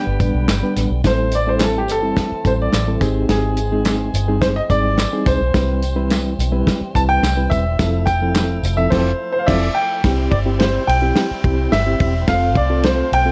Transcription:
Already playing: tonewheel organ D3 G3 B3, horn section B3 D4 G4 B4, grand piano G5
0.07 fingered electric bass G1
0.20 fingered electric bass A1, reed electric piano G3 B3 D4 B4, kick, closed hi-hat, tambourine
0.35 fingered electric bass B1
0.48 fingered electric bass G1, snare, clap, closed hi-hat, tambourine
0.63 reed electric piano G3 B3 D4 B4
0.76 fingered electric bass A1, snare, closed hi-hat, tambourine
0.90 fingered electric bass B1
1.04 fingered electric bass A1, tonewheel organ E3 A3 C4, reed electric piano G3 C4 E4 A4, grand piano C5, kick, snare, closed hi-hat, tambourine
1.31 grand piano D5, closed hi-hat, tambourine
1.47 reed electric piano G3 C4 E4 A4, grand piano C5
1.59 grand piano G#4, snare, clap, closed hi-hat, tambourine
1.64 grand piano A4
1.78 grand piano G4
1.88 fingered electric bass G1, grand piano A4, closed hi-hat, tambourine
2.03 reed electric piano G3 C4 E4 A4
2.17 kick, snare, closed hi-hat
2.32 muted fingered electric bass stroke
2.45 fingered electric bass A1, reed electric piano G3 C4 E4 A4, grand piano C5, kick, closed hi-hat, tambourine
2.62 grand piano D5
2.73 fingered electric bass A1, snare, clap, closed hi-hat, tambourine
2.88 reed electric piano G3 C4 E4 A4
3.01 fingered electric bass G#1, tonewheel organ G#3, reed electric piano C4 D#4 G4 G#4, kick, snare, closed hi-hat, tambourine
3.29 fingered electric bass G#1, grand piano G#4, snare, closed hi-hat, tambourine
3.57 closed hi-hat, tambourine
3.72 reed electric piano G#3 C4 D#4 G#4
3.85 snare, clap, closed hi-hat, tambourine
4.14 fingered electric bass G1, closed hi-hat, tambourine
4.28 reed electric piano G3 C4 D#4 G#4
4.42 grand piano C5, kick, snare, closed hi-hat, tambourine
4.56 grand piano D#5
4.70 fingered electric bass G#1, reed electric piano G3 C4 D#4 G#4, grand piano D5, kick, closed hi-hat, tambourine
4.98 snare, clap, closed hi-hat, tambourine
5.13 reed electric piano G3 C4 D#4 G#4
5.26 fingered electric bass C2, grand piano C5, kick, snare, closed hi-hat, tambourine
5.41 fingered electric bass B1
5.54 fingered electric bass C2, tonewheel organ E3 G3, reed electric piano G3 C4 E4 B4, kick, snare, closed hi-hat, tambourine
5.82 closed hi-hat, tambourine
5.96 reed electric piano G3 C4 E4 B4
6.10 snare, clap, closed hi-hat, tambourine
6.39 fingered electric bass B1, closed hi-hat, tambourine
6.52 reed electric piano G3 C4 E4 B4
6.67 kick, snare, closed hi-hat, tambourine
6.81 muted fingered electric bass stroke
6.95 fingered electric bass C2, reed electric piano G3 C4 E4 B4, grand piano A5, kick, closed hi-hat, tambourine
7.09 grand piano G5
7.22 fingered electric bass C2, snare, clap, closed hi-hat, tambourine
7.37 reed electric piano G3 C4 E4 B4
7.50 fingered electric bass E1, grand piano E5, kick, closed hi-hat, tambourine
7.79 fingered electric bass F1, reed electric piano F3 C4 E4 A4, tonewheel organ F3 A3 E4, kick, snare, closed hi-hat, tambourine
8.06 grand piano G5, kick, closed hi-hat, tambourine
8.22 reed electric piano F3 C4 E4 A4
8.35 snare, clap, closed hi-hat, tambourine
8.63 fingered electric bass F1, closed hi-hat, tambourine
8.77 reed electric piano F3 C4 E4 A4, grand piano E5
8.90 fingered electric bass F1, reed electric piano F3 C4 E4 A4, grand piano C5, kick, snare, crash
9.32 grand piano C5
9.39 grand piano F5
9.46 fingered electric bass F1, reed electric piano F3 C4 E4 A4, grand piano D5 E5, kick, snare, crash
9.75 grand piano G5
10.04 fingered electric bass C2, tonewheel organ G3 C4 E4, reed electric piano C4 E4 G4, kick, snare, ride
10.31 fingered electric bass G1, grand piano D5, kick, ride
10.46 reed electric piano C4 E4 G4
10.59 grand piano C5, snare, ride
10.87 fingered electric bass B1, grand piano G5, ride
11.02 reed electric piano C4 E4 G4
11.16 snare, ride
11.31 muted fingered electric bass stroke
11.44 fingered electric bass C2, reed electric piano C4 E4 G4, kick, ride
11.72 fingered electric bass G1, grand piano E5, snare, ride
11.86 reed electric piano C4 E4 G4
12.00 fingered electric bass E1, kick, ride
12.27 fingered electric bass F1, tonewheel organ A3 F4, reed electric piano C4 F4 A4, grand piano F5, kick, snare, ride
12.55 fingered electric bass C2, grand piano D5, kick, ride
12.70 reed electric piano C4 F4 A4
12.83 grand piano C5, snare, ride
13.12 fingered electric bass B1, grand piano G5, ride
13.25 reed electric piano C4 F4 A4

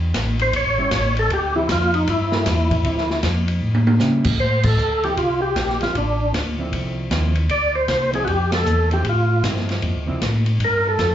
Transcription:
Already playing: tonewheel organ E2
0.14 tonewheel organ A1, kick, snare, hi-hat pedal, ride
0.39 tonewheel organ C5, ride
0.53 tonewheel organ A#1 C#5, kick, ride
0.66 tonewheel organ A1
0.78 tonewheel organ G1, hollow-body jazz guitar G3 C#4 E4
0.91 tonewheel organ A1, kick, snare, hi-hat pedal, ride
1.17 tonewheel organ A4, ride
1.30 tonewheel organ D2 G4, kick, ride
1.55 hollow-body jazz guitar D3 F3 C4 E4, tonewheel organ E4
1.69 tonewheel organ F2 F4, kick, snare, hi-hat pedal, ride
1.94 tonewheel organ D#4, ride
2.07 tonewheel organ G2 E4, kick, ride
2.32 hollow-body jazz guitar G3 A#3 F4 A4, snare
2.46 tonewheel organ E2, kick, snare, hi-hat pedal, ride
2.71 kick, ride
2.85 tonewheel organ D2, hollow-body jazz guitar D3 F3 C4 E4, kick, ride
2.98 snare
3.10 snare
3.23 tonewheel organ F2, kick, snare, hi-hat pedal, ride
3.48 ride
3.62 tonewheel organ A2
3.75 high tom
3.87 high tom
4.00 tonewheel organ C#3, hollow-body jazz guitar G3 C#4 E4, snare, hi-hat pedal
4.25 tonewheel organ C#3, kick, crash
4.39 tonewheel organ A2 C5, kick
4.63 tonewheel organ A4, kick, crash
4.78 tonewheel organ D2, hi-hat pedal
5.03 hollow-body jazz guitar D3 F3 C4 E4, tonewheel organ G4, ride
5.17 tonewheel organ C2 F4, kick, ride
5.42 tonewheel organ G4
5.56 tonewheel organ A#1, kick, snare, hi-hat pedal, ride
5.70 snare
5.80 tonewheel organ A#1 F4, hollow-body jazz guitar D3 F3 C4 E4, snare, ride
5.95 tonewheel organ A1 D4, kick, ride
6.34 tonewheel organ D2, kick, snare, hi-hat pedal, ride
6.59 hollow-body jazz guitar D3 F3 C4 E4
6.72 tonewheel organ C2, kick, ride
7.11 tonewheel organ D#2, hollow-body jazz guitar D3 F3 C4 E4, kick, snare, hi-hat pedal, ride
7.35 ride
7.49 tonewheel organ D2 D5, kick, ride
7.75 tonewheel organ C5
7.88 tonewheel organ C2, kick, snare, hi-hat pedal, ride
8.13 hollow-body jazz guitar D3 F3 C4 E4, tonewheel organ G#4, ride
8.25 tonewheel organ F2 F#4 G4, kick, ride
8.52 tonewheel organ A4, snare, ride
8.66 tonewheel organ E2, hi-hat pedal
8.91 hollow-body jazz guitar D3 F3 C4 E4, tonewheel organ G4, ride
9.05 tonewheel organ A2, kick, ride
9.09 tonewheel organ F4
9.44 tonewheel organ G2, hollow-body jazz guitar D3 F3 C4 E4, kick, snare, hi-hat pedal, ride
9.57 snare
9.69 snare, ride
9.82 tonewheel organ F2, kick, ride
9.96 tonewheel organ D2
10.07 tonewheel organ C2, hollow-body jazz guitar D3 F3 C4 E4
10.21 tonewheel organ A2, kick, snare, hi-hat pedal, ride
10.46 ride
10.60 tonewheel organ G2, kick, ride
10.64 tonewheel organ A#4
10.89 tonewheel organ A4
10.99 tonewheel organ F2, kick, snare, hi-hat pedal, ride

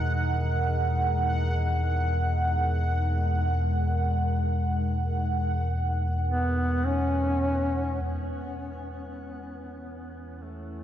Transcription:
Already playing: synth drone E2 B2, ambient pad G#3 D#4 A#4, synth texture F#5
6.28 duduk B3
6.86 duduk C#4
8.05 synth drone E2, duduk B3, ambient pad E4
10.02 ambient pad B4
10.42 duduk A3

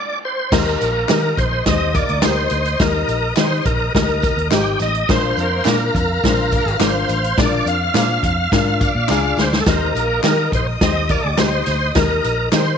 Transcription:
Already playing: tonewheel organ D5
0.25 tonewheel organ C5
0.51 fingered electric bass D#2, horn section C4 C5, upright piano D#4 G4 A#4, tonewheel organ A#4, violin section D#5 D#6, kick, snare, crash, tambourine
0.79 fingered electric bass A#1, horn section A#3 A#4, closed hi-hat, tambourine
1.08 fingered electric bass D#3, clean electric guitar D#4 G4 A#4 D#5, upright piano D#4 G4 A#4, tonewheel organ A#4, snare, clap, closed hi-hat, tambourine
1.37 fingered electric bass A#1, tonewheel organ C5, kick, closed hi-hat
1.65 fingered electric bass D#2, horn section C4 C5, upright piano D#4 G4 C5, tonewheel organ D#5, kick, snare, closed hi-hat, tambourine
1.93 horn section A#3 A#4, tonewheel organ D5, kick, closed hi-hat, tambourine
2.09 fingered electric bass D2, closed hi-hat
2.22 fingered electric bass D2, clean electric guitar D#4 G4 A#4 D#5, upright piano D#4 G4 A#4, tonewheel organ C5, snare, clap, closed hi-hat, tambourine
2.50 fingered electric bass D2, closed hi-hat, tambourine
2.65 closed hi-hat
2.79 fingered electric bass D#2, upright piano D#4 G4 A#4, tonewheel organ A#4, kick, snare, closed hi-hat, tambourine
3.08 fingered electric bass A#1, closed hi-hat, tambourine
3.36 fingered electric bass D#3, clean electric guitar D#4 G4 A#4 D#5, upright piano D#4 G4 C5, tonewheel organ C5, snare, clap, closed hi-hat, tambourine
3.65 fingered electric bass A#1, tonewheel organ A#4, kick, closed hi-hat
3.95 fingered electric bass D2, upright piano D#4 G4 A#4, tonewheel organ A#4, kick, snare, closed hi-hat
4.22 kick, closed hi-hat, tambourine
4.37 fingered electric bass D#2, closed hi-hat
4.51 fingered electric bass G#1, clean electric guitar D#4 G4 A#4 D#5, upright piano D#4 G4 C5, tonewheel organ G4, snare, clap, closed hi-hat, tambourine
4.79 fingered electric bass A1, tonewheel organ D#5, snare, closed hi-hat, tambourine
4.95 closed hi-hat
5.07 fingered electric bass A#1, horn section C4 C5, upright piano D4 F4 A#4, tonewheel organ C5, violin section F5 F6, kick, snare, closed hi-hat, tambourine
5.37 fingered electric bass F2, horn section A#3 A#4, closed hi-hat, tambourine
5.65 fingered electric bass A#2, clean electric guitar D4 F4 A#4 D5, upright piano D4 F4 A#4, tonewheel organ A#4, snare, clap, closed hi-hat, tambourine
5.94 fingered electric bass F2, tonewheel organ A#4, kick, closed hi-hat, tambourine
6.24 fingered electric bass A#1, horn section C4 C5, upright piano D4 F4 A#4, kick, snare, closed hi-hat, tambourine
6.52 horn section A#3 A#4, kick, closed hi-hat, tambourine
6.66 fingered electric bass G#1, closed hi-hat
6.79 fingered electric bass G#1, clean electric guitar D4 F4 A#4 D5, upright piano D4 F4 A#4, tonewheel organ C5, snare, clap, closed hi-hat, tambourine
7.08 fingered electric bass A1, closed hi-hat, tambourine
7.24 closed hi-hat
7.38 fingered electric bass A#1, upright piano D4 F4 A#4, tonewheel organ D5, kick, snare, closed hi-hat, tambourine
7.65 fingered electric bass F2, tonewheel organ F5, closed hi-hat, tambourine
7.94 fingered electric bass A#2, clean electric guitar D4 F4 A#4 D5, upright piano D4 F4 C5, snare, clap, closed hi-hat, tambourine
8.23 fingered electric bass F2, kick, closed hi-hat
8.52 fingered electric bass G#2, upright piano D4 F4 A#4, kick, snare, closed hi-hat
8.79 violin section D5 D6, kick, closed hi-hat, tambourine
8.95 fingered electric bass A#2
9.08 fingered electric bass C#2, clean electric guitar D4 F4 A#4 D5, upright piano D4 F4 G#4, snare, clap, tambourine
9.37 fingered electric bass D2, snare, tambourine
9.41 tonewheel organ C5
9.53 snare
9.60 tonewheel organ A4
9.66 fingered electric bass D#2, horn section C4 C5, upright piano D#4 G4 A#4, tonewheel organ A#4, violin section D#5 D#6, kick, snare, closed hi-hat, tambourine
9.95 fingered electric bass A#1, horn section A#3 A#4, closed hi-hat, tambourine
10.23 fingered electric bass D#3, clean electric guitar D#4 G4 A#4 D#5, upright piano D#4 G4 A#4, tonewheel organ A#4, snare, clap, closed hi-hat, tambourine
10.52 fingered electric bass A#1, tonewheel organ C5, kick, closed hi-hat
10.80 fingered electric bass D#2, horn section C4 C5, upright piano D#4 G4 C5, tonewheel organ D#5, kick, snare, closed hi-hat
11.09 horn section A#3 A#4, tonewheel organ D5, kick, closed hi-hat, tambourine
11.25 fingered electric bass D2
11.32 tonewheel organ D5
11.37 fingered electric bass D2, clean electric guitar D#4 G4 A#4 D#5, upright piano D#4 G4 C5, tonewheel organ C5, snare, clap, closed hi-hat, tambourine
11.66 fingered electric bass D2, snare, closed hi-hat, tambourine
11.95 fingered electric bass D#2, upright piano D#4 G4 A#4, tonewheel organ A#4, kick, snare, closed hi-hat, tambourine
12.24 fingered electric bass A#1, closed hi-hat, tambourine
12.52 fingered electric bass D#3, clean electric guitar D#4 G4 A#4 D#5, upright piano D#4 G4 A#4, tonewheel organ C5, snare, clap, closed hi-hat, tambourine

